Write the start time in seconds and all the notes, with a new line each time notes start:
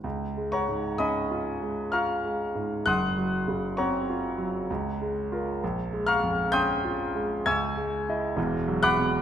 0.04 C#2
0.37 G#3
0.52 C#5 F#5 A#5 C#6
0.68 G#2
0.98 C#4 D#5 G#5 B5 D#6
1.31 F4
1.62 G#3
1.92 F4 F5 A#5 C#6 F6
2.24 G#3
2.55 G#2
2.86 F#1 F#2 F#5 C6 D#6 F#6
3.17 F#3
3.48 C#3
3.77 C4 C#5 F#5 A#5 C#6
4.10 F4
4.38 F#3
4.70 C#2
5.02 G#3
5.32 F4 A#4
5.64 A#1
5.93 G#3
6.07 F5 A#5 C#6 F6
6.24 F2
6.52 C#4 G5 C6 D#6 G6
6.85 F4
7.15 G#3
7.46 C#2 G#5 C#6 E6 G#6
7.77 G#3
8.09 E4 D#5
8.37 E1 E2
8.67 F#3
8.83 F#5 B5 D6 F#6
8.99 B2